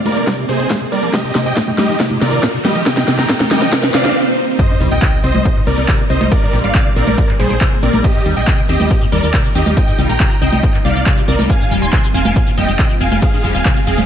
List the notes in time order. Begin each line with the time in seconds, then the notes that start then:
Already playing: A#3 C4 G#4, riser
0.06 A#1 G3 A#4 D5, open hi-hat, high conga
0.16 A#1 F3, closed hi-hat
0.27 C3, kick, snare, closed hi-hat
0.38 C3
0.49 A#1 C3 G#4 C5, open hi-hat
0.60 A#1 C3, closed hi-hat
0.70 A#2, kick, snare, closed hi-hat
0.81 C3
0.92 A#1 G3 A#4 D5, open hi-hat
1.03 A#1 F3, closed hi-hat
1.14 C3 D#3 D#4 F4 G4 A#4 D#5, kick, snare, closed hi-hat
1.24 C3
1.35 D#2 C3, snare, open hi-hat
1.46 A#1 C3 D#5 G5, closed hi-hat
1.57 A#2, kick, snare, closed hi-hat
1.68 C3, high conga
1.78 D#2 G3 G4 D#5, snare, open hi-hat, high conga
1.89 D#2 F3, closed hi-hat
2.00 C3, kick, snare, closed hi-hat
2.11 C3, high conga
2.22 D#2 C3 A#4 D5, snare, open hi-hat
2.32 D#2 C3, closed hi-hat
2.43 A#2, kick, snare, closed hi-hat
2.54 C3
2.65 D#2 G3 G4 D#5, snare, open hi-hat, high conga
2.75 D#2 F3, closed hi-hat
2.86 C3 G3 A#3 C4 D#4 D#5 G5, kick, snare, closed hi-hat
2.97 C3, snare
3.08 C2 C3, snare, open hi-hat
3.19 A#1 C3 G5 A#5, snare, closed hi-hat
3.29 A#2, kick, snare, closed hi-hat
3.40 C3, snare, high conga
3.51 C2 G3 D#5 G5, snare, open hi-hat, high conga
3.62 C2 F3, snare, closed hi-hat
3.73 C3, kick, snare, closed hi-hat, swell
3.83 C3, snare
3.94 C2 C3 D5 F5, snare, open hi-hat
4.05 C2 C3, snare, closed hi-hat
4.59 C3 G3 A#3 C4 D#4 C5 D#5, kick, closed hi-hat, crash, sub drop
4.70 G2
4.81 C2 G3, open hi-hat
4.91 A#1 G3 D#5 G5, closed hi-hat
5.02 C3, kick, clap, closed hi-hat
5.13 C3
5.24 C2 C4 C5 D#5, open hi-hat
5.35 C2 G3, closed hi-hat, high conga
5.45 C3, kick, closed hi-hat
5.56 G2
5.67 C2 G3 A#4 D5, open hi-hat
5.78 C2 G3, closed hi-hat
5.88 C3, kick, clap, closed hi-hat
5.99 C3
6.10 C2 C4 C5 D#5, open hi-hat
6.21 C2 G3, closed hi-hat, high conga
6.32 C3 A#3 G#4 A#4 D5, kick, closed hi-hat
6.42 G2
6.53 A#1 G3, open hi-hat
6.64 G#1 G3 D5 F5, closed hi-hat
6.75 C3, kick, clap, closed hi-hat
6.86 C3
6.96 A#1 C4 A#4 D5, open hi-hat
7.07 A#1 G3, closed hi-hat, high conga
7.18 C3, kick, closed hi-hat
7.29 G2, clap
7.40 A#1 G3 G#4 C5, open hi-hat
7.50 A#1 G3, closed hi-hat
7.61 C3, kick, clap, closed hi-hat
7.72 C3
7.83 A#1 C4 A#4 D5, open hi-hat
7.93 A#1 G3, closed hi-hat, high conga
8.04 C3 D#3 D#4 F4 G4 A#4 D#5, kick, closed hi-hat
8.15 G2
8.26 D#2 G3, open hi-hat
8.37 A#1 G3 D#5 G5, closed hi-hat
8.47 C3, kick, clap, closed hi-hat
8.58 C3
8.69 D#2 C4 G4 D#5, open hi-hat
8.80 D#2 G3, closed hi-hat, high conga
8.91 C3, kick, closed hi-hat
9.01 G2
9.12 D#2 G3 A#4 D5, open hi-hat
9.23 D#2 G3, closed hi-hat
9.34 C3, kick, clap, closed hi-hat
9.45 C3
9.55 D#2 C4 G4 D#5, open hi-hat
9.66 D#2 G3, closed hi-hat, high conga
9.77 C3 G3 A#3 C4 D#5 G5, kick, closed hi-hat
9.88 G2
9.98 C2 G3, open hi-hat
10.09 A#1 G3 G5 A#5, closed hi-hat
10.20 C3, kick, clap, closed hi-hat
10.31 C3
10.42 C2 C4 D#5 G5, open hi-hat
10.52 C2 G3, closed hi-hat, high conga
10.63 C3, kick, closed hi-hat
10.74 G2, clap
10.85 C2 G3 D5 F5, open hi-hat
10.96 C2 G3, closed hi-hat
11.06 C3, kick, clap, closed hi-hat
11.17 C3
11.28 C2 C4 A#4 D5, open hi-hat
11.39 C2 G3, closed hi-hat, high conga
11.50 C3 G#3 C4 F4 F5 G#5, kick, closed hi-hat
11.60 G2
11.71 F1 G3, open hi-hat
11.82 D#1 G3 G#5 C6, closed hi-hat
11.93 C3, kick, clap, closed hi-hat
12.04 C3
12.14 F1 C4 F5 G#5, open hi-hat
12.25 F1 G3, closed hi-hat, high conga
12.36 C3, kick, closed hi-hat
12.47 G2
12.57 F1 G3 D#5 G5, open hi-hat
12.68 F1 G3, closed hi-hat
12.79 C3, kick, clap, closed hi-hat
12.90 C3
13.01 F1 C4 F5 G#5, open hi-hat
13.11 F1 G3, closed hi-hat, high conga
13.22 C3 G#4 F5, kick, closed hi-hat
13.33 G2
13.44 F1 G3, open hi-hat
13.55 D#1 G3 F5 G#5, closed hi-hat
13.65 C3, kick, clap, closed hi-hat
13.76 C3
13.87 F1 C4 G#4 F5, open hi-hat
13.98 F1 G3, closed hi-hat, high conga